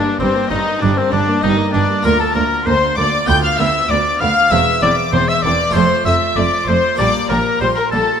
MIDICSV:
0, 0, Header, 1, 8, 480
1, 0, Start_track
1, 0, Key_signature, -1, "major"
1, 0, Tempo, 617284
1, 1589, Time_signature, 4, 2, 24, 8
1, 6376, End_track
2, 0, Start_track
2, 0, Title_t, "Violin section"
2, 0, Program_c, 0, 48
2, 156, Note_on_c, 0, 72, 104
2, 386, Note_on_c, 0, 75, 100
2, 391, Note_off_c, 0, 72, 0
2, 625, Note_on_c, 0, 74, 98
2, 630, Note_off_c, 0, 75, 0
2, 748, Note_on_c, 0, 72, 99
2, 749, Note_off_c, 0, 74, 0
2, 868, Note_off_c, 0, 72, 0
2, 870, Note_on_c, 0, 74, 96
2, 1104, Note_on_c, 0, 75, 96
2, 1110, Note_off_c, 0, 74, 0
2, 1346, Note_off_c, 0, 75, 0
2, 1346, Note_on_c, 0, 74, 100
2, 1582, Note_off_c, 0, 74, 0
2, 1585, Note_on_c, 0, 82, 104
2, 1707, Note_off_c, 0, 82, 0
2, 1715, Note_on_c, 0, 81, 105
2, 1825, Note_on_c, 0, 82, 104
2, 1832, Note_off_c, 0, 81, 0
2, 2067, Note_off_c, 0, 82, 0
2, 2067, Note_on_c, 0, 84, 111
2, 2303, Note_off_c, 0, 84, 0
2, 2303, Note_on_c, 0, 86, 102
2, 2544, Note_on_c, 0, 91, 120
2, 2546, Note_off_c, 0, 86, 0
2, 2664, Note_off_c, 0, 91, 0
2, 2671, Note_on_c, 0, 89, 112
2, 2788, Note_off_c, 0, 89, 0
2, 2795, Note_on_c, 0, 88, 109
2, 3032, Note_off_c, 0, 88, 0
2, 3033, Note_on_c, 0, 86, 104
2, 3271, Note_off_c, 0, 86, 0
2, 3273, Note_on_c, 0, 89, 110
2, 3506, Note_off_c, 0, 89, 0
2, 3506, Note_on_c, 0, 88, 108
2, 3747, Note_off_c, 0, 88, 0
2, 3756, Note_on_c, 0, 86, 109
2, 3991, Note_off_c, 0, 86, 0
2, 3991, Note_on_c, 0, 84, 113
2, 4109, Note_off_c, 0, 84, 0
2, 4112, Note_on_c, 0, 88, 101
2, 4227, Note_off_c, 0, 88, 0
2, 4232, Note_on_c, 0, 86, 106
2, 4465, Note_off_c, 0, 86, 0
2, 4468, Note_on_c, 0, 84, 114
2, 4703, Note_off_c, 0, 84, 0
2, 4715, Note_on_c, 0, 88, 103
2, 4777, Note_off_c, 0, 88, 0
2, 4950, Note_on_c, 0, 86, 95
2, 5187, Note_off_c, 0, 86, 0
2, 5190, Note_on_c, 0, 84, 110
2, 5433, Note_off_c, 0, 84, 0
2, 5434, Note_on_c, 0, 86, 112
2, 5672, Note_off_c, 0, 86, 0
2, 5677, Note_on_c, 0, 82, 101
2, 5913, Note_off_c, 0, 82, 0
2, 5923, Note_on_c, 0, 84, 113
2, 6041, Note_off_c, 0, 84, 0
2, 6048, Note_on_c, 0, 82, 100
2, 6161, Note_on_c, 0, 81, 100
2, 6164, Note_off_c, 0, 82, 0
2, 6376, Note_off_c, 0, 81, 0
2, 6376, End_track
3, 0, Start_track
3, 0, Title_t, "Oboe"
3, 0, Program_c, 1, 68
3, 0, Note_on_c, 1, 62, 75
3, 148, Note_off_c, 1, 62, 0
3, 153, Note_on_c, 1, 60, 81
3, 386, Note_off_c, 1, 60, 0
3, 391, Note_on_c, 1, 63, 79
3, 628, Note_off_c, 1, 63, 0
3, 634, Note_on_c, 1, 62, 77
3, 758, Note_on_c, 1, 60, 71
3, 770, Note_off_c, 1, 62, 0
3, 869, Note_off_c, 1, 60, 0
3, 874, Note_on_c, 1, 62, 82
3, 1107, Note_off_c, 1, 62, 0
3, 1115, Note_on_c, 1, 63, 83
3, 1221, Note_off_c, 1, 63, 0
3, 1341, Note_on_c, 1, 62, 82
3, 1580, Note_off_c, 1, 62, 0
3, 1592, Note_on_c, 1, 70, 103
3, 1703, Note_off_c, 1, 70, 0
3, 1707, Note_on_c, 1, 69, 80
3, 1822, Note_off_c, 1, 69, 0
3, 1827, Note_on_c, 1, 70, 86
3, 2071, Note_on_c, 1, 72, 91
3, 2082, Note_off_c, 1, 70, 0
3, 2307, Note_off_c, 1, 72, 0
3, 2311, Note_on_c, 1, 74, 92
3, 2550, Note_on_c, 1, 79, 103
3, 2561, Note_off_c, 1, 74, 0
3, 2669, Note_off_c, 1, 79, 0
3, 2673, Note_on_c, 1, 77, 87
3, 2794, Note_on_c, 1, 76, 92
3, 2806, Note_off_c, 1, 77, 0
3, 3039, Note_on_c, 1, 74, 90
3, 3051, Note_off_c, 1, 76, 0
3, 3268, Note_on_c, 1, 77, 93
3, 3279, Note_off_c, 1, 74, 0
3, 3507, Note_on_c, 1, 76, 102
3, 3519, Note_off_c, 1, 77, 0
3, 3744, Note_off_c, 1, 76, 0
3, 3749, Note_on_c, 1, 74, 93
3, 3856, Note_off_c, 1, 74, 0
3, 3983, Note_on_c, 1, 72, 93
3, 4108, Note_on_c, 1, 76, 89
3, 4120, Note_off_c, 1, 72, 0
3, 4219, Note_on_c, 1, 74, 90
3, 4231, Note_off_c, 1, 76, 0
3, 4456, Note_on_c, 1, 72, 86
3, 4468, Note_off_c, 1, 74, 0
3, 4700, Note_off_c, 1, 72, 0
3, 4705, Note_on_c, 1, 76, 88
3, 4946, Note_on_c, 1, 74, 80
3, 4958, Note_off_c, 1, 76, 0
3, 5191, Note_on_c, 1, 72, 90
3, 5203, Note_off_c, 1, 74, 0
3, 5426, Note_off_c, 1, 72, 0
3, 5431, Note_on_c, 1, 74, 89
3, 5541, Note_off_c, 1, 74, 0
3, 5668, Note_on_c, 1, 70, 84
3, 5909, Note_off_c, 1, 70, 0
3, 5914, Note_on_c, 1, 72, 85
3, 5969, Note_off_c, 1, 72, 0
3, 6026, Note_on_c, 1, 70, 83
3, 6147, Note_off_c, 1, 70, 0
3, 6152, Note_on_c, 1, 69, 81
3, 6376, Note_off_c, 1, 69, 0
3, 6376, End_track
4, 0, Start_track
4, 0, Title_t, "Violin section"
4, 0, Program_c, 2, 48
4, 0, Note_on_c, 2, 62, 83
4, 157, Note_off_c, 2, 62, 0
4, 157, Note_on_c, 2, 60, 84
4, 392, Note_off_c, 2, 60, 0
4, 399, Note_on_c, 2, 63, 86
4, 631, Note_on_c, 2, 62, 78
4, 632, Note_off_c, 2, 63, 0
4, 751, Note_on_c, 2, 60, 80
4, 753, Note_off_c, 2, 62, 0
4, 871, Note_on_c, 2, 62, 85
4, 872, Note_off_c, 2, 60, 0
4, 1110, Note_off_c, 2, 62, 0
4, 1115, Note_on_c, 2, 63, 87
4, 1347, Note_off_c, 2, 63, 0
4, 1347, Note_on_c, 2, 62, 80
4, 1410, Note_off_c, 2, 62, 0
4, 1588, Note_on_c, 2, 70, 97
4, 1706, Note_off_c, 2, 70, 0
4, 1707, Note_on_c, 2, 69, 84
4, 1824, Note_on_c, 2, 70, 86
4, 1828, Note_off_c, 2, 69, 0
4, 1886, Note_off_c, 2, 70, 0
4, 2073, Note_on_c, 2, 72, 97
4, 2306, Note_off_c, 2, 72, 0
4, 2311, Note_on_c, 2, 74, 98
4, 2545, Note_off_c, 2, 74, 0
4, 2551, Note_on_c, 2, 79, 102
4, 2598, Note_off_c, 2, 79, 0
4, 2669, Note_on_c, 2, 77, 93
4, 2786, Note_on_c, 2, 76, 90
4, 2787, Note_off_c, 2, 77, 0
4, 3024, Note_on_c, 2, 74, 100
4, 3028, Note_off_c, 2, 76, 0
4, 3087, Note_off_c, 2, 74, 0
4, 3271, Note_on_c, 2, 77, 99
4, 3506, Note_off_c, 2, 77, 0
4, 3515, Note_on_c, 2, 76, 99
4, 3750, Note_on_c, 2, 74, 90
4, 3752, Note_off_c, 2, 76, 0
4, 3813, Note_off_c, 2, 74, 0
4, 3997, Note_on_c, 2, 72, 94
4, 4109, Note_off_c, 2, 72, 0
4, 4117, Note_on_c, 2, 76, 82
4, 4229, Note_off_c, 2, 76, 0
4, 4238, Note_on_c, 2, 74, 94
4, 4467, Note_off_c, 2, 74, 0
4, 4476, Note_on_c, 2, 72, 89
4, 4712, Note_off_c, 2, 72, 0
4, 4717, Note_on_c, 2, 76, 90
4, 4949, Note_off_c, 2, 76, 0
4, 4955, Note_on_c, 2, 74, 81
4, 5194, Note_off_c, 2, 74, 0
4, 5194, Note_on_c, 2, 72, 94
4, 5431, Note_off_c, 2, 72, 0
4, 5440, Note_on_c, 2, 74, 95
4, 5675, Note_off_c, 2, 74, 0
4, 5684, Note_on_c, 2, 70, 85
4, 5919, Note_on_c, 2, 72, 87
4, 5922, Note_off_c, 2, 70, 0
4, 5967, Note_off_c, 2, 72, 0
4, 6044, Note_on_c, 2, 70, 72
4, 6091, Note_off_c, 2, 70, 0
4, 6167, Note_on_c, 2, 69, 88
4, 6376, Note_off_c, 2, 69, 0
4, 6376, End_track
5, 0, Start_track
5, 0, Title_t, "Viola section"
5, 0, Program_c, 3, 48
5, 26, Note_on_c, 3, 58, 64
5, 150, Note_on_c, 3, 55, 70
5, 153, Note_off_c, 3, 58, 0
5, 265, Note_off_c, 3, 55, 0
5, 273, Note_on_c, 3, 58, 62
5, 391, Note_on_c, 3, 55, 62
5, 395, Note_off_c, 3, 58, 0
5, 514, Note_off_c, 3, 55, 0
5, 515, Note_on_c, 3, 58, 61
5, 633, Note_on_c, 3, 55, 67
5, 635, Note_off_c, 3, 58, 0
5, 745, Note_off_c, 3, 55, 0
5, 757, Note_on_c, 3, 58, 66
5, 874, Note_on_c, 3, 55, 66
5, 875, Note_off_c, 3, 58, 0
5, 988, Note_on_c, 3, 58, 64
5, 993, Note_off_c, 3, 55, 0
5, 1109, Note_off_c, 3, 58, 0
5, 1110, Note_on_c, 3, 55, 66
5, 1221, Note_off_c, 3, 55, 0
5, 1221, Note_on_c, 3, 58, 63
5, 1341, Note_on_c, 3, 55, 62
5, 1345, Note_off_c, 3, 58, 0
5, 1462, Note_on_c, 3, 58, 62
5, 1465, Note_off_c, 3, 55, 0
5, 1574, Note_off_c, 3, 58, 0
5, 1583, Note_on_c, 3, 58, 73
5, 1645, Note_off_c, 3, 58, 0
5, 1823, Note_on_c, 3, 58, 67
5, 1886, Note_off_c, 3, 58, 0
5, 2066, Note_on_c, 3, 58, 71
5, 2128, Note_off_c, 3, 58, 0
5, 2307, Note_on_c, 3, 58, 67
5, 2369, Note_off_c, 3, 58, 0
5, 2551, Note_on_c, 3, 59, 72
5, 2614, Note_off_c, 3, 59, 0
5, 2794, Note_on_c, 3, 59, 67
5, 2856, Note_off_c, 3, 59, 0
5, 3035, Note_on_c, 3, 59, 67
5, 3097, Note_off_c, 3, 59, 0
5, 3276, Note_on_c, 3, 59, 69
5, 3338, Note_off_c, 3, 59, 0
5, 3510, Note_on_c, 3, 60, 77
5, 3572, Note_off_c, 3, 60, 0
5, 3754, Note_on_c, 3, 60, 70
5, 3816, Note_off_c, 3, 60, 0
5, 3997, Note_on_c, 3, 60, 74
5, 4059, Note_off_c, 3, 60, 0
5, 4238, Note_on_c, 3, 60, 65
5, 4300, Note_off_c, 3, 60, 0
5, 4477, Note_on_c, 3, 57, 73
5, 4539, Note_off_c, 3, 57, 0
5, 4716, Note_on_c, 3, 57, 64
5, 4778, Note_off_c, 3, 57, 0
5, 4955, Note_on_c, 3, 57, 68
5, 5017, Note_off_c, 3, 57, 0
5, 5196, Note_on_c, 3, 57, 66
5, 5258, Note_off_c, 3, 57, 0
5, 5444, Note_on_c, 3, 55, 75
5, 5506, Note_off_c, 3, 55, 0
5, 5679, Note_on_c, 3, 55, 63
5, 5742, Note_off_c, 3, 55, 0
5, 5922, Note_on_c, 3, 55, 68
5, 5984, Note_off_c, 3, 55, 0
5, 6161, Note_on_c, 3, 55, 63
5, 6224, Note_off_c, 3, 55, 0
5, 6376, End_track
6, 0, Start_track
6, 0, Title_t, "Harpsichord"
6, 0, Program_c, 4, 6
6, 0, Note_on_c, 4, 43, 63
6, 0, Note_on_c, 4, 58, 55
6, 0, Note_on_c, 4, 62, 57
6, 133, Note_off_c, 4, 43, 0
6, 156, Note_on_c, 4, 43, 67
6, 372, Note_off_c, 4, 43, 0
6, 397, Note_on_c, 4, 43, 69
6, 612, Note_off_c, 4, 43, 0
6, 641, Note_on_c, 4, 43, 65
6, 853, Note_off_c, 4, 43, 0
6, 873, Note_on_c, 4, 43, 66
6, 1087, Note_off_c, 4, 43, 0
6, 1114, Note_on_c, 4, 43, 69
6, 1327, Note_off_c, 4, 43, 0
6, 1356, Note_on_c, 4, 43, 67
6, 1536, Note_off_c, 4, 58, 0
6, 1541, Note_off_c, 4, 62, 0
6, 1568, Note_off_c, 4, 43, 0
6, 1574, Note_on_c, 4, 58, 60
6, 1585, Note_on_c, 4, 65, 61
6, 1595, Note_on_c, 4, 38, 70
6, 1808, Note_off_c, 4, 38, 0
6, 1833, Note_on_c, 4, 38, 65
6, 2047, Note_off_c, 4, 38, 0
6, 2078, Note_on_c, 4, 38, 72
6, 2290, Note_off_c, 4, 38, 0
6, 2318, Note_on_c, 4, 38, 70
6, 2512, Note_off_c, 4, 58, 0
6, 2518, Note_off_c, 4, 65, 0
6, 2529, Note_on_c, 4, 59, 56
6, 2530, Note_off_c, 4, 38, 0
6, 2541, Note_on_c, 4, 65, 59
6, 2552, Note_on_c, 4, 38, 64
6, 2767, Note_off_c, 4, 38, 0
6, 2798, Note_on_c, 4, 38, 63
6, 3010, Note_off_c, 4, 38, 0
6, 3037, Note_on_c, 4, 38, 68
6, 3249, Note_off_c, 4, 38, 0
6, 3275, Note_on_c, 4, 38, 67
6, 3470, Note_off_c, 4, 59, 0
6, 3476, Note_off_c, 4, 65, 0
6, 3489, Note_off_c, 4, 38, 0
6, 3492, Note_on_c, 4, 60, 59
6, 3502, Note_on_c, 4, 64, 62
6, 3516, Note_on_c, 4, 40, 63
6, 3729, Note_off_c, 4, 40, 0
6, 3751, Note_on_c, 4, 40, 67
6, 3965, Note_off_c, 4, 40, 0
6, 3991, Note_on_c, 4, 40, 71
6, 4205, Note_off_c, 4, 40, 0
6, 4228, Note_on_c, 4, 40, 72
6, 4428, Note_on_c, 4, 57, 57
6, 4429, Note_off_c, 4, 60, 0
6, 4434, Note_off_c, 4, 64, 0
6, 4438, Note_on_c, 4, 65, 57
6, 4444, Note_off_c, 4, 40, 0
6, 4450, Note_on_c, 4, 69, 55
6, 4461, Note_on_c, 4, 41, 64
6, 4680, Note_off_c, 4, 41, 0
6, 4708, Note_on_c, 4, 41, 65
6, 4925, Note_off_c, 4, 41, 0
6, 4955, Note_on_c, 4, 41, 69
6, 5170, Note_off_c, 4, 41, 0
6, 5192, Note_on_c, 4, 41, 68
6, 5385, Note_off_c, 4, 57, 0
6, 5390, Note_off_c, 4, 65, 0
6, 5396, Note_off_c, 4, 69, 0
6, 5405, Note_on_c, 4, 58, 57
6, 5410, Note_off_c, 4, 41, 0
6, 5414, Note_on_c, 4, 62, 57
6, 5424, Note_on_c, 4, 67, 58
6, 5438, Note_on_c, 4, 46, 63
6, 5654, Note_off_c, 4, 46, 0
6, 5678, Note_on_c, 4, 46, 63
6, 5895, Note_off_c, 4, 46, 0
6, 5920, Note_on_c, 4, 46, 66
6, 6136, Note_off_c, 4, 46, 0
6, 6163, Note_on_c, 4, 46, 65
6, 6357, Note_off_c, 4, 58, 0
6, 6362, Note_off_c, 4, 62, 0
6, 6367, Note_off_c, 4, 67, 0
6, 6376, Note_off_c, 4, 46, 0
6, 6376, End_track
7, 0, Start_track
7, 0, Title_t, "Cello section"
7, 0, Program_c, 5, 48
7, 165, Note_on_c, 5, 43, 74
7, 228, Note_off_c, 5, 43, 0
7, 403, Note_on_c, 5, 43, 72
7, 466, Note_off_c, 5, 43, 0
7, 641, Note_on_c, 5, 43, 83
7, 703, Note_off_c, 5, 43, 0
7, 875, Note_on_c, 5, 43, 74
7, 937, Note_off_c, 5, 43, 0
7, 1115, Note_on_c, 5, 43, 78
7, 1177, Note_off_c, 5, 43, 0
7, 1355, Note_on_c, 5, 43, 77
7, 1418, Note_off_c, 5, 43, 0
7, 1592, Note_on_c, 5, 38, 90
7, 1655, Note_off_c, 5, 38, 0
7, 1832, Note_on_c, 5, 38, 73
7, 1894, Note_off_c, 5, 38, 0
7, 2073, Note_on_c, 5, 38, 75
7, 2135, Note_off_c, 5, 38, 0
7, 2309, Note_on_c, 5, 38, 74
7, 2371, Note_off_c, 5, 38, 0
7, 2551, Note_on_c, 5, 38, 85
7, 2613, Note_off_c, 5, 38, 0
7, 2793, Note_on_c, 5, 38, 79
7, 2855, Note_off_c, 5, 38, 0
7, 3030, Note_on_c, 5, 38, 75
7, 3092, Note_off_c, 5, 38, 0
7, 3272, Note_on_c, 5, 38, 79
7, 3334, Note_off_c, 5, 38, 0
7, 3517, Note_on_c, 5, 40, 88
7, 3579, Note_off_c, 5, 40, 0
7, 3751, Note_on_c, 5, 40, 81
7, 3814, Note_off_c, 5, 40, 0
7, 3991, Note_on_c, 5, 40, 76
7, 4053, Note_off_c, 5, 40, 0
7, 4231, Note_on_c, 5, 40, 77
7, 4293, Note_off_c, 5, 40, 0
7, 4471, Note_on_c, 5, 41, 84
7, 4533, Note_off_c, 5, 41, 0
7, 4714, Note_on_c, 5, 41, 72
7, 4776, Note_off_c, 5, 41, 0
7, 4958, Note_on_c, 5, 41, 78
7, 5020, Note_off_c, 5, 41, 0
7, 5198, Note_on_c, 5, 41, 76
7, 5260, Note_off_c, 5, 41, 0
7, 5443, Note_on_c, 5, 46, 85
7, 5505, Note_off_c, 5, 46, 0
7, 5680, Note_on_c, 5, 46, 78
7, 5742, Note_off_c, 5, 46, 0
7, 5920, Note_on_c, 5, 46, 75
7, 5982, Note_off_c, 5, 46, 0
7, 6161, Note_on_c, 5, 46, 71
7, 6223, Note_off_c, 5, 46, 0
7, 6376, End_track
8, 0, Start_track
8, 0, Title_t, "Double bass section"
8, 0, Program_c, 6, 48
8, 161, Note_on_c, 6, 31, 81
8, 223, Note_off_c, 6, 31, 0
8, 401, Note_on_c, 6, 31, 72
8, 463, Note_off_c, 6, 31, 0
8, 645, Note_on_c, 6, 31, 78
8, 707, Note_off_c, 6, 31, 0
8, 877, Note_on_c, 6, 31, 81
8, 939, Note_off_c, 6, 31, 0
8, 1119, Note_on_c, 6, 31, 77
8, 1181, Note_off_c, 6, 31, 0
8, 1355, Note_on_c, 6, 31, 72
8, 1417, Note_off_c, 6, 31, 0
8, 1595, Note_on_c, 6, 38, 83
8, 1658, Note_off_c, 6, 38, 0
8, 1833, Note_on_c, 6, 38, 79
8, 1895, Note_off_c, 6, 38, 0
8, 2076, Note_on_c, 6, 38, 83
8, 2138, Note_off_c, 6, 38, 0
8, 2323, Note_on_c, 6, 38, 75
8, 2385, Note_off_c, 6, 38, 0
8, 2558, Note_on_c, 6, 38, 85
8, 2620, Note_off_c, 6, 38, 0
8, 2792, Note_on_c, 6, 38, 77
8, 2854, Note_off_c, 6, 38, 0
8, 3031, Note_on_c, 6, 38, 80
8, 3093, Note_off_c, 6, 38, 0
8, 3272, Note_on_c, 6, 38, 74
8, 3334, Note_off_c, 6, 38, 0
8, 3512, Note_on_c, 6, 28, 81
8, 3574, Note_off_c, 6, 28, 0
8, 3753, Note_on_c, 6, 28, 74
8, 3815, Note_off_c, 6, 28, 0
8, 3987, Note_on_c, 6, 28, 83
8, 4049, Note_off_c, 6, 28, 0
8, 4230, Note_on_c, 6, 28, 76
8, 4292, Note_off_c, 6, 28, 0
8, 4464, Note_on_c, 6, 29, 84
8, 4527, Note_off_c, 6, 29, 0
8, 4709, Note_on_c, 6, 29, 77
8, 4772, Note_off_c, 6, 29, 0
8, 4947, Note_on_c, 6, 29, 79
8, 5009, Note_off_c, 6, 29, 0
8, 5187, Note_on_c, 6, 29, 69
8, 5249, Note_off_c, 6, 29, 0
8, 5428, Note_on_c, 6, 34, 79
8, 5491, Note_off_c, 6, 34, 0
8, 5676, Note_on_c, 6, 34, 76
8, 5738, Note_off_c, 6, 34, 0
8, 5918, Note_on_c, 6, 34, 79
8, 5980, Note_off_c, 6, 34, 0
8, 6160, Note_on_c, 6, 34, 73
8, 6222, Note_off_c, 6, 34, 0
8, 6376, End_track
0, 0, End_of_file